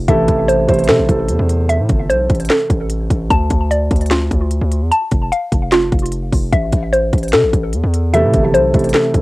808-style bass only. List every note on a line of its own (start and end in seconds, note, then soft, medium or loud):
0.08 0.28 A1 loud
0.28 0.67 A1 loud
0.69 0.90 A1 loud
0.89 1.00 C3 medium
0.99 1.08 A1 loud
1.09 1.30 A1 loud
1.29 1.39 E2 loud
1.39 1.81 E2 loud
1.79 1.89 A2 loud
1.89 2.11 G1 loud
2.10 2.29 B1 loud
2.30 2.49 A1 loud
2.70 3.09 A1 loud
3.10 3.30 A1 loud
3.30 3.50 D2 loud
3.51 3.89 D2 loud
3.91 4.30 D2 loud
4.31 4.60 D2 loud
4.61 4.83 D2 loud
4.81 4.91 E2 loud
5.12 5.31 F1 loud
5.52 5.91 F1 loud
5.92 6.31 F1 loud
6.32 6.52 F1 loud
6.53 6.72 A1 loud
6.73 7.11 A1 loud
7.13 7.35 A1 loud
7.33 7.45 C3 loud
7.43 7.53 A1 loud
7.53 7.75 A1 loud
7.73 7.83 E2 medium
7.84 8.25 E2 loud
8.24 8.33 A2 loud
8.34 8.55 G1 loud
8.54 8.73 B1 loud
8.74 8.93 A1 loud
9.14 9.22 A1 loud